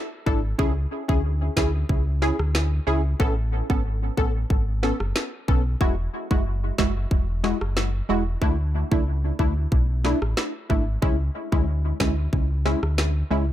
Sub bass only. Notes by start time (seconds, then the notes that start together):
0.26 G#1
0.59 C#2
1.09 D2
1.57 D2
1.89 C#2
2.39 D2
2.87 C#2
3.20 A1
3.70 G#1
4.18 A1
4.50 G#1
5.00 F#1
5.48 B1
5.81 E1
6.31 F#1
6.78 F#1
7.11 E1
7.61 F#1
8.09 E1
8.42 D2
8.92 C#2
9.39 D2
9.72 B1
10.22 A1
10.70 G#1
11.02 C#2
11.52 D2
12.00 D2
12.33 C#2
12.83 D2
13.31 C#2